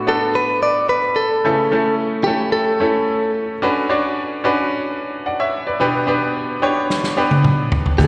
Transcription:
Already playing: A2 B3 D4 F#4 A4
0.07 B3 D4 F#4 A4
0.35 B4
0.63 D5
0.89 B4
1.16 A4
1.44 C#3 A3 C#4 E4 A4
1.71 A3 C#4 E4 A4
2.24 A3 C#4 E4 G4 A4
2.52 A4
2.80 A3 C#4 E4 A4
3.62 C#4 D4 F#4 B4
3.89 D4 F#4 C#5 D5
4.44 C#4 D4 F#4 B4
5.26 D5 F#5
5.40 C#5 E5
5.67 B4 D5
5.80 B2 B3 D4 G4 B4
6.07 B3 D4 G4 B4
6.62 B3 D4 G4 C#5
6.90 snare
7.04 snare
7.17 B3 D4 G4 B4
7.31 high tom
7.44 mid tom
7.72 floor tom
7.86 floor tom
7.98 D2 A2 B3 D4 F#4 A4, kick, closed hi-hat

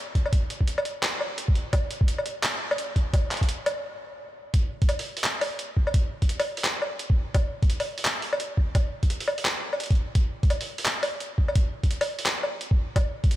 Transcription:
0.15 kick, closed hi-hat
0.26 low woodblock
0.33 kick, closed hi-hat
0.50 closed hi-hat
0.61 kick
0.68 closed hi-hat
0.78 low woodblock
0.85 closed hi-hat
1.03 clap, closed hi-hat
1.20 low woodblock
1.38 closed hi-hat
1.48 kick
1.55 closed hi-hat
1.73 kick, closed hi-hat, low woodblock
1.91 closed hi-hat
2.01 kick
2.08 closed hi-hat
2.18 low woodblock
2.26 closed hi-hat
2.43 clap, closed hi-hat
2.71 low woodblock
2.78 closed hi-hat
2.96 kick, closed hi-hat
3.13 kick, closed hi-hat, low woodblock
3.31 clap, closed hi-hat
3.37 closed hi-hat
3.41 kick, closed hi-hat
3.49 closed hi-hat
3.66 closed hi-hat, low woodblock
4.54 kick, closed hi-hat
4.82 kick, closed hi-hat
4.89 closed hi-hat, low woodblock
4.99 open hi-hat
5.17 open hi-hat
5.24 clap, closed hi-hat
5.41 open hi-hat, low woodblock
5.59 closed hi-hat
5.77 kick
5.87 low woodblock
5.94 kick, closed hi-hat
6.22 kick, closed hi-hat
6.29 closed hi-hat
6.40 open hi-hat, low woodblock
6.57 open hi-hat
6.64 clap, closed hi-hat
6.82 low woodblock
6.99 closed hi-hat
7.10 kick
7.34 kick, closed hi-hat, low woodblock
7.63 kick, closed hi-hat
7.70 closed hi-hat
7.80 open hi-hat, low woodblock
7.98 open hi-hat
8.05 clap, closed hi-hat
8.22 open hi-hat
8.33 low woodblock
8.40 closed hi-hat
8.57 kick
8.75 kick, closed hi-hat, low woodblock
9.03 kick, closed hi-hat
9.10 closed hi-hat
9.20 open hi-hat
9.28 low woodblock
9.38 open hi-hat
9.45 clap, closed hi-hat
9.73 low woodblock
9.80 closed hi-hat
9.84 closed hi-hat
9.86 closed hi-hat
9.91 kick, closed hi-hat
9.95 closed hi-hat
10.15 kick, closed hi-hat
10.43 kick, closed hi-hat
10.50 closed hi-hat, low woodblock
10.61 open hi-hat
10.78 open hi-hat
10.85 clap, closed hi-hat
11.03 open hi-hat, low woodblock
11.20 closed hi-hat
11.38 kick
11.48 low woodblock
11.55 kick, closed hi-hat
11.83 kick, closed hi-hat
11.91 closed hi-hat
12.01 open hi-hat, low woodblock
12.19 open hi-hat
12.26 clap, closed hi-hat
12.43 low woodblock
12.61 closed hi-hat
12.71 kick
12.96 kick, closed hi-hat, low woodblock
13.24 kick, closed hi-hat
13.31 closed hi-hat

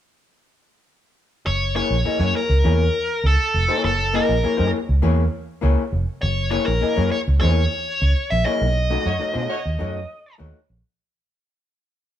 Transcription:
1.46 F#1 C#5
1.75 A#3 E4 G#4 C#5
1.91 A#1
2.05 A#3 E4 G#4 D#5, muted fingered electric bass stroke
2.20 F#2 A#3 E4 G#4 C#5
2.36 A#4
2.49 C#2
2.64 E2 A#3 E4 G#4 C#5
3.24 C#2 A4
3.54 F1
3.68 A#3 E4 G#4 C#5
3.84 F#1 A4
4.13 A#3 E4 G#4 A#4 D#5
4.29 A#1
4.43 A#3 E4 G#4 C#5
4.57 F#2 A#3 E4 G#4 C#5
4.89 C#2
5.02 E2 A#3 E4 G#4 C#5
5.61 C#2 A#3 E4 G#4 C#5
5.92 F1
6.21 F#1 C#5
6.51 A#3 E4 G#4 C#5
6.66 A#1 A#4
6.81 A#3 E4 G#4 D#5
6.96 F#2 A#3 E4 G#4 C#5
7.12 C#5
7.28 C#2
7.41 E2 A#3 E4 G#4 C#5
8.02 C#2
8.30 A#1 E5
8.45 A#3 E4 G#4 C#5 D#5
8.62 B1
8.90 A3 D#4 F#4 D#5
9.05 F#2 A3 F#4 C#5
9.19 A3 D#4 F#4 C#5, muted fingered electric bass stroke
9.34 B2 A3 D#4 F#4 C#5
9.49 A3 F#4 C#5
9.66 D#2
9.79 F#2 A3 D#4 F#4 C#5
10.38 D#2 A3 D#4 F#4 C#5
10.70 A#1

